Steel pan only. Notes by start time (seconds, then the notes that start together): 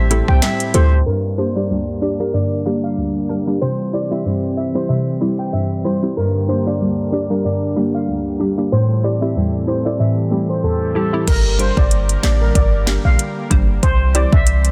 0.29 G5
0.43 E5
0.74 C5
1.06 A#4
1.38 C5
1.56 D5
2.02 D5
2.20 A#4
2.34 D5
2.84 F5
3.62 C5
3.94 D5
4.12 E5
4.57 E5
4.75 C5
4.89 E5
5.39 G5
5.53 E5
5.85 C5
6.17 A#4
6.49 C5
6.67 D5
7.13 D5
7.31 A#4
7.45 D5
7.95 F5
8.72 C5
9.04 D5
9.22 E5
9.68 C5
9.86 D5
10.00 E5
10.50 C5
10.64 A4
10.96 A4
11.28 A#4
11.60 C5
11.78 D5
12.23 D5
12.41 A#4
12.55 D5
13.05 F5
13.83 C5
14.15 D5
14.33 E5